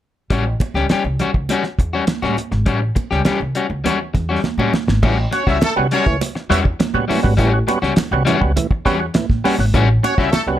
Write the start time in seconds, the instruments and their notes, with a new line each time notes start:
0.30 upright bass A1, clean electric guitar G3 C#4 F#4, kick, closed hi-hat, muted conga
0.46 muted clean electric guitar stroke
0.60 muted clean electric guitar stroke, kick, closed hi-hat, muted conga
0.74 upright bass C#2, clean electric guitar G3 C#4 G4, snare
0.89 clean electric guitar G3 C#4 G4, snare, closed hi-hat, high conga
1.04 upright bass C2, muted clean electric guitar stroke
1.19 clean electric guitar G3 C#4 F#4, closed hi-hat, low conga
1.34 upright bass C#2, muted clean electric guitar stroke, kick
1.49 clean electric guitar G3 C#4 F#4, closed hi-hat, muted conga
1.64 snare
1.79 upright bass E2, muted clean electric guitar stroke, kick, closed hi-hat
1.93 clean electric guitar G3 C#4 F#4
2.07 muted clean electric guitar stroke, snare, closed hi-hat, high conga
2.22 upright bass A2, clean electric guitar G3 C#4 F#4, snare, high conga
2.37 muted clean electric guitar stroke, closed hi-hat, high conga
2.51 upright bass G#1, muted clean electric guitar stroke, snare
2.66 upright bass A1, clean electric guitar G3 C#4 F#4, kick, closed hi-hat
2.80 muted clean electric guitar stroke
2.95 muted clean electric guitar stroke, kick, closed hi-hat, muted conga
3.11 upright bass C#2, clean electric guitar G3 C#4 G4, snare
3.25 clean electric guitar G3 C#4 G4, snare, closed hi-hat, high conga
3.40 upright bass C2
3.55 clean electric guitar G3 C#4 F#4, closed hi-hat
3.70 upright bass C#2, muted clean electric guitar stroke
3.84 clean electric guitar G3 C#4 F#4, closed hi-hat, muted conga, low conga
4.14 upright bass E2, muted clean electric guitar stroke, kick, snare, closed hi-hat, low conga
4.29 clean electric guitar G3 C#4 F#4
4.44 muted clean electric guitar stroke, snare, high conga
4.58 upright bass A2, clean electric guitar G3 C#4 F#4, high conga
4.74 muted clean electric guitar stroke, snare, high conga
4.87 upright bass G#1, muted clean electric guitar stroke, snare
5.02 upright bass A1, tonewheel organ A2 E3, clean electric guitar G3 C#4 F#4, kick, crash, muted conga
5.31 tonewheel organ C#4 F#4, horn section C#4 C#5, muted clean electric guitar stroke, closed hi-hat, muted conga
5.47 upright bass C#2, clean electric guitar G3 C#4 F#4, horn section E4 E5, kick, snare
5.61 horn section A3 A4, muted clean electric guitar stroke, snare, closed hi-hat, high conga
5.76 upright bass C2, tonewheel organ G3 B3 C#4 F#4, muted clean electric guitar stroke
5.91 clean electric guitar G3 C#4 F#4, horn section C#4 C#5, closed hi-hat
6.06 upright bass C#2, tonewheel organ A2 E3, muted clean electric guitar stroke, kick
6.21 muted clean electric guitar stroke, closed hi-hat, muted conga
6.35 muted clean electric guitar stroke, snare
6.50 upright bass E2, clean electric guitar G3 C#4 F#4, tonewheel organ G3 B3 C#4 F#4, horn section E4 E5, closed hi-hat
6.65 muted clean electric guitar stroke, kick
6.80 muted clean electric guitar stroke, snare, closed hi-hat, high conga
6.94 upright bass A2, tonewheel organ G3 B3 C#4 F#4
7.08 tonewheel organ A2 E3, clean electric guitar G3 C#4 F#4, open hi-hat, high conga
7.23 upright bass G#1, tonewheel organ G3 B3 C#4 F#4, muted clean electric guitar stroke, kick, snare
7.37 upright bass A1, tonewheel organ A2 E3, clean electric guitar G3 C#4 F#4, kick, closed hi-hat
7.54 tonewheel organ C#4 F#4
7.67 tonewheel organ G3 B3 C#4 F#4, muted clean electric guitar stroke, closed hi-hat, muted conga
7.82 upright bass C#2, clean electric guitar G3 C#4 F#4, snare
7.96 muted clean electric guitar stroke, muted upright bass stroke, snare, closed hi-hat, high conga
8.11 upright bass C2, tonewheel organ G3 B3 C#4 F#4, muted clean electric guitar stroke
8.25 tonewheel organ A2 E3, clean electric guitar G3 C#4 F#4, closed hi-hat, low conga
8.41 upright bass C#2, tonewheel organ G3 B3 C#4 F#4, muted clean electric guitar stroke, kick
8.56 tonewheel organ A2 E3, muted clean electric guitar stroke, closed hi-hat, muted conga, low conga
8.71 muted clean electric guitar stroke, kick
8.85 upright bass E2, clean electric guitar G3 C#4 F#4, tonewheel organ G3 B3 C#4 F#4, kick, snare, closed hi-hat
9.00 tonewheel organ C#4 F#4, muted clean electric guitar stroke
9.14 tonewheel organ A2 E3, muted clean electric guitar stroke, snare, closed hi-hat, high conga
9.29 upright bass A2, kick, snare
9.44 tonewheel organ G3 B3 C#4 F#4, clean electric guitar G3 C#4 F#4, open hi-hat, high conga
9.58 upright bass G#1, tonewheel organ C#4 F#4, muted clean electric guitar stroke, snare
9.74 upright bass A1, tonewheel organ A2 E3, clean electric guitar G3 C#4 F#4, kick, closed hi-hat, muted conga
10.03 horn section C#4 C#5, tonewheel organ C#4 F#4, muted clean electric guitar stroke, closed hi-hat, muted conga
10.18 upright bass C#2, clean electric guitar G3 C#4 F#4, horn section E4 E5, kick, snare
10.31 horn section A3 A4, muted upright bass stroke, snare, closed hi-hat, high conga
10.47 upright bass C2, tonewheel organ G3 B3 C#4 F#4, muted clean electric guitar stroke